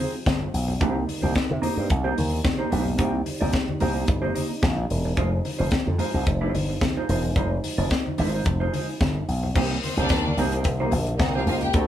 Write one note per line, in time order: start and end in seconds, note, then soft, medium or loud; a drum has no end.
0.00 0.77 C3 medium
0.00 0.78 F3 medium
0.00 0.78 G#3 medium
0.00 0.13 C4 medium
0.00 0.13 D#4 medium
0.00 0.78 F4 medium
0.00 0.14 G#4 medium
0.00 0.13 C5 medium
0.00 high conga medium
0.14 muted clean electric guitar stroke soft
0.26 0.48 G1 loud
0.26 muted clean electric guitar stroke soft
0.26 kick loud
0.26 snare loud
0.26 closed hi-hat medium
0.26 muted conga soft
0.26 high conga medium
0.40 muted clean electric guitar stroke soft
0.40 muted conga soft
0.54 0.75 B1 medium
0.54 open hi-hat medium
0.68 muted clean electric guitar stroke soft
0.68 low conga medium
0.81 1.03 C2 loud
0.81 9.37 C3 medium
0.81 5.14 G3 medium
0.81 1.01 A#3 medium
0.81 2.98 A#3 medium
0.81 0.95 D#4 medium
0.81 9.37 D#4 medium
0.81 0.95 G4 medium
0.81 0.94 C5 loud
0.81 kick loud
0.81 closed hi-hat medium
0.95 muted clean electric guitar stroke soft
1.07 muted clean electric guitar stroke soft
1.07 open hi-hat medium
1.07 high conga soft
1.21 1.33 C2 medium
1.21 1.34 A#3 medium
1.21 1.35 D#4 medium
1.21 1.35 G4 medium
1.21 1.35 C5 medium
1.21 high conga medium
1.35 muted clean electric guitar stroke soft
1.35 kick loud
1.35 snare loud
1.35 closed hi-hat medium
1.35 muted conga soft
1.50 1.61 C3 medium
1.50 muted clean electric guitar stroke soft
1.50 muted conga soft
1.50 high conga medium
1.62 1.77 A#3 medium
1.62 1.76 D#4 medium
1.62 1.76 G4 medium
1.62 1.75 C5 medium
1.62 open hi-hat medium
1.62 low conga medium
1.76 1.87 G2 medium
1.76 1.89 A#3 medium
1.76 1.90 D#4 medium
1.76 1.90 G4 medium
1.76 1.90 C5 medium
1.90 2.12 C2 loud
1.90 muted clean electric guitar stroke soft
1.90 kick loud
1.90 closed hi-hat medium
1.90 muted conga soft
2.04 2.16 A#3 medium
2.04 2.16 D#4 medium
2.04 2.16 G4 medium
2.04 2.17 C5 medium
2.04 muted conga soft
2.17 2.39 D#2 medium
2.17 muted clean electric guitar stroke soft
2.17 open hi-hat medium
2.17 high conga medium
2.31 muted clean electric guitar stroke soft
2.44 muted clean electric guitar stroke soft
2.44 kick loud
2.44 snare loud
2.44 closed hi-hat medium
2.44 muted conga soft
2.44 high conga medium
2.58 2.70 A#3 medium
2.58 2.70 D#4 medium
2.58 2.70 G4 medium
2.58 2.71 C5 medium
2.71 2.94 B1 medium
2.71 2.92 A#3 medium
2.71 2.85 D#4 medium
2.71 2.85 G4 medium
2.71 2.84 C5 loud
2.71 open hi-hat medium
2.85 muted clean electric guitar stroke soft
2.85 low conga medium
2.98 3.21 C2 loud
2.98 3.17 A#3 medium
2.98 5.16 C4 medium
2.98 3.13 D#4 medium
2.98 3.13 G4 medium
2.98 3.13 C5 medium
2.98 kick loud
2.98 closed hi-hat medium
2.98 muted conga soft
3.14 muted clean electric guitar stroke soft
3.14 muted conga soft
3.26 muted clean electric guitar stroke soft
3.26 open hi-hat medium
3.26 high conga soft
3.41 3.51 C2 loud
3.41 3.52 A#3 medium
3.41 3.52 D#4 medium
3.41 3.53 G4 medium
3.41 3.54 D5 medium
3.41 high conga medium
3.53 muted clean electric guitar stroke soft
3.53 kick loud
3.53 snare loud
3.53 closed hi-hat medium
3.69 muted clean electric guitar stroke soft
3.69 muted conga soft
3.69 high conga medium
3.80 4.03 C2 medium
3.80 3.95 A#3 medium
3.80 3.94 D#4 medium
3.80 3.94 G4 medium
3.80 3.93 C5 medium
3.80 open hi-hat medium
3.80 low conga medium
3.94 4.06 A#3 medium
3.94 4.07 D#4 medium
3.94 4.07 C5 medium
4.08 4.30 G1 medium
4.08 muted clean electric guitar stroke soft
4.08 kick loud
4.08 closed hi-hat medium
4.22 4.33 A#3 medium
4.22 4.33 D#4 medium
4.22 4.34 G4 medium
4.22 4.34 C5 medium
4.22 muted conga soft
4.34 4.49 A#3 medium
4.34 4.49 D#4 medium
4.34 4.49 G4 medium
4.34 4.48 C5 medium
4.34 open hi-hat medium
4.34 high conga medium
4.49 muted clean electric guitar stroke soft
4.62 4.85 A#1 medium
4.62 muted clean electric guitar stroke soft
4.62 kick loud
4.62 snare loud
4.62 closed hi-hat medium
4.62 muted conga soft
4.62 high conga medium
4.78 muted clean electric guitar stroke soft
4.78 muted conga soft
4.90 5.12 E1 medium
4.90 open hi-hat medium
5.05 muted clean electric guitar stroke medium
5.05 low conga medium
5.17 5.39 F1 loud
5.17 9.37 F3 medium
5.17 5.35 G#3 medium
5.17 9.37 G#3 medium
5.17 5.33 D#4 medium
5.17 5.32 F4 medium
5.17 5.31 C5 loud
5.17 kick loud
5.17 closed hi-hat medium
5.32 muted clean electric guitar stroke soft
5.45 muted clean electric guitar stroke soft
5.45 open hi-hat medium
5.45 high conga soft
5.59 5.70 F1 loud
5.59 5.71 G#3 medium
5.59 5.71 D#4 soft
5.59 5.71 F4 medium
5.59 5.72 C5 medium
5.59 high conga medium
5.71 muted slap bass stroke soft
5.71 muted clean electric guitar stroke soft
5.71 kick loud
5.71 snare loud
5.71 closed hi-hat medium
5.86 5.97 F2 medium
5.86 muted clean electric guitar stroke soft
5.86 muted conga soft
5.86 high conga medium
5.98 6.14 G#3 medium
5.98 6.13 D#4 medium
5.98 6.13 F4 medium
5.98 6.12 C5 medium
5.98 open hi-hat medium
5.98 low conga medium
6.13 6.24 C2 medium
6.13 6.27 G#3 medium
6.13 6.27 D#4 medium
6.13 6.27 F4 medium
6.13 6.27 C5 medium
6.27 6.49 F1 medium
6.27 muted clean electric guitar stroke soft
6.27 kick loud
6.27 closed hi-hat medium
6.27 muted conga soft
6.41 6.53 G#3 medium
6.41 6.53 D#4 medium
6.41 6.53 F4 medium
6.41 6.54 C5 medium
6.54 6.76 G1 medium
6.54 muted clean electric guitar stroke soft
6.54 open hi-hat medium
6.54 high conga medium
6.69 muted clean electric guitar stroke soft
6.81 muted clean electric guitar stroke soft
6.81 kick loud
6.81 snare loud
6.81 closed hi-hat medium
6.81 muted conga soft
6.81 high conga medium
6.97 7.08 G#3 soft
6.97 7.08 D#4 soft
6.97 7.08 F4 medium
6.97 7.09 C5 medium
6.97 muted conga soft
7.09 7.31 E1 medium
7.09 7.27 G#3 medium
7.09 7.23 D#4 medium
7.09 7.22 F4 medium
7.09 7.22 C5 medium
7.09 open hi-hat medium
7.23 muted clean electric guitar stroke medium
7.23 low conga medium
7.36 7.58 F1 loud
7.36 7.54 G#3 medium
7.36 7.50 D#4 medium
7.36 7.49 F4 medium
7.36 7.49 C5 medium
7.36 kick loud
7.36 closed hi-hat medium
7.50 muted clean electric guitar stroke soft
7.63 muted clean electric guitar stroke soft
7.63 open hi-hat medium
7.63 high conga soft
7.78 7.88 F1 loud
7.78 7.89 G#3 medium
7.78 7.90 D#4 medium
7.78 7.90 F4 medium
7.78 7.91 D5 medium
7.78 high conga medium
7.90 muted clean electric guitar stroke soft
7.90 kick loud
7.90 snare loud
7.90 closed hi-hat medium
8.06 muted clean electric guitar stroke soft
8.06 muted conga soft
8.06 high conga medium
8.18 8.40 G#1 medium
8.18 8.33 G#3 medium
8.18 8.33 D#4 medium
8.18 8.33 F4 medium
8.18 8.32 C5 medium
8.18 open hi-hat medium
8.18 low conga medium
8.34 8.45 G#3 soft
8.34 8.45 D#4 medium
8.34 8.46 F4 medium
8.34 8.46 C5 medium
8.46 8.68 F1 medium
8.46 muted clean electric guitar stroke soft
8.46 kick loud
8.46 closed hi-hat medium
8.46 muted conga soft
8.60 8.73 G#3 medium
8.60 8.74 D#4 medium
8.60 8.74 F4 medium
8.60 8.74 C5 medium
8.60 muted conga soft
8.74 8.88 G#3 medium
8.74 8.89 D#4 medium
8.74 8.88 F4 medium
8.74 8.88 C5 medium
8.74 open hi-hat medium
8.74 high conga medium
8.89 muted clean electric guitar stroke soft
9.01 9.22 G1 loud
9.01 muted clean electric guitar stroke soft
9.01 kick loud
9.01 snare loud
9.01 closed hi-hat medium
9.01 muted conga soft
9.01 high conga medium
9.16 muted clean electric guitar stroke soft
9.16 muted conga soft
9.28 9.50 B1 medium
9.28 open hi-hat medium
9.43 muted clean electric guitar stroke soft
9.43 low conga medium
9.54 9.77 C2 medium
9.54 11.87 C3 medium
9.54 11.71 D#3 medium
9.54 11.71 G3 medium
9.54 11.71 A#3 medium
9.54 9.74 A#3 medium
9.54 9.70 D#4 medium
9.54 9.70 G4 medium
9.54 9.69 C5 medium
9.54 kick loud
9.54 crash loud
9.54 cowbell medium
9.71 muted clean electric guitar stroke soft
9.71 muted conga soft
9.83 9.95 C4 medium
9.83 9.95 C5 medium
9.83 muted clean electric guitar stroke soft
9.83 open hi-hat medium
9.83 high conga medium
9.97 10.07 C2 loud
9.97 10.09 A#3 soft
9.97 10.35 D4 loud
9.97 10.10 D#4 medium
9.97 10.11 G4 medium
9.97 10.11 C5 medium
9.97 10.35 D5 loud
9.97 closed hi-hat soft
9.97 high conga medium
10.09 10.32 D#2 loud
10.09 muted clean electric guitar stroke soft
10.09 kick loud
10.09 snare loud
10.09 closed hi-hat medium
10.09 cowbell medium
10.25 muted clean electric guitar stroke soft
10.25 muted conga soft
10.25 high conga medium
10.37 10.59 C2 medium
10.37 10.53 A#3 medium
10.37 10.53 D#4 loud
10.37 10.52 G4 medium
10.37 10.52 C5 loud
10.37 open hi-hat medium
10.37 low conga medium
10.52 10.64 A#3 medium
10.52 10.65 D#4 medium
10.52 10.65 G4 medium
10.52 10.65 C5 medium
10.52 closed hi-hat medium
10.64 10.86 C2 medium
10.64 muted clean electric guitar stroke soft
10.64 kick loud
10.64 closed hi-hat medium
10.64 cowbell medium
10.80 10.92 A#3 medium
10.80 10.93 D#4 medium
10.80 10.93 G4 medium
10.80 10.93 C5 medium
10.80 muted conga soft
10.91 11.14 A#1 medium
10.91 muted clean electric guitar stroke soft
10.91 open hi-hat medium
10.91 cowbell medium
10.91 high conga medium
11.06 muted clean electric guitar stroke soft
11.06 closed hi-hat soft
11.19 11.41 C2 medium
11.19 11.31 D#4 medium
11.19 11.31 D#5 medium
11.19 muted clean electric guitar stroke soft
11.19 kick loud
11.19 snare loud
11.19 closed hi-hat medium
11.19 cowbell medium
11.19 muted conga soft
11.19 high conga medium
11.35 11.48 A#3 soft
11.35 11.48 D#4 medium
11.35 11.45 F4 medium
11.35 11.48 G4 soft
11.35 11.48 C5 medium
11.35 11.45 F5 medium
11.35 muted conga soft
11.46 11.68 C#2 medium
11.46 11.66 A#3 loud
11.46 11.62 D#4 medium
11.46 11.58 F4 medium
11.46 11.62 G4 medium
11.46 11.61 C5 medium
11.46 11.58 F5 medium
11.46 open hi-hat medium
11.61 11.71 G4 medium
11.61 11.72 G5 medium
11.61 muted clean electric guitar stroke soft
11.61 closed hi-hat soft
11.61 low conga medium
11.73 11.86 D2 loud
11.73 11.87 F#3 medium
11.73 11.87 A3 medium
11.73 11.87 C4 medium
11.73 11.87 D4 medium
11.73 11.87 F#4 medium
11.73 11.87 A4 medium
11.73 11.87 D5 medium
11.73 kick loud
11.73 closed hi-hat medium
11.73 cowbell medium